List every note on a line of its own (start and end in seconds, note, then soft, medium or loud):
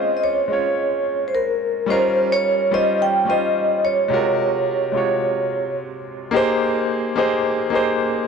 0.00 0.46 G#3 medium
0.00 0.46 C4 medium
0.00 0.47 C#4 medium
0.00 0.48 F4 medium
0.00 0.48 C5 medium
0.00 0.15 D#5 medium
0.17 0.23 D#5 medium
0.24 1.23 C#5 medium
0.48 1.84 G#3 medium
0.48 1.86 C#4 medium
0.48 1.86 F4 medium
0.53 1.87 C#5 medium
1.28 1.34 C5 medium
1.35 1.91 A#4 medium
1.86 2.68 G3 medium
1.86 2.68 C#4 medium
1.86 2.69 D#4 medium
1.86 2.70 F4 medium
1.90 2.70 A#4 loud
1.90 2.29 C5 medium
2.32 2.74 C#5 medium
2.71 3.24 G3 medium
2.71 3.24 C#4 medium
2.71 3.25 D#4 medium
2.71 3.25 F4 medium
2.71 3.25 C5 medium
2.71 3.02 D#5 medium
3.02 3.30 G5 loud
3.25 4.06 G3 medium
3.25 4.07 C#4 medium
3.25 4.08 D#4 medium
3.25 4.08 F4 medium
3.30 4.09 C5 medium
3.30 3.86 D#5 loud
3.85 5.74 C#5 medium
4.08 4.90 C3 medium
4.08 4.90 G#3 medium
4.08 4.91 F4 medium
4.12 4.92 F#4 medium
4.12 4.92 A#4 medium
4.92 6.29 C3 medium
4.92 6.29 G#3 medium
4.92 6.30 F4 medium
4.92 6.31 F#4 medium
4.97 6.31 C#5 medium
6.31 7.12 A#3 medium
6.31 7.13 D#4 medium
6.31 7.14 G4 medium
6.31 7.14 G#4 medium
6.36 7.15 C5 loud
7.16 7.68 A#3 medium
7.16 7.69 D#4 medium
7.16 7.69 G4 medium
7.16 7.69 G#4 medium
7.16 7.70 C5 loud
7.70 8.27 A#3 medium
7.70 8.27 D#4 medium
7.70 8.27 G4 medium
7.70 8.27 G#4 medium
7.75 8.27 C5 medium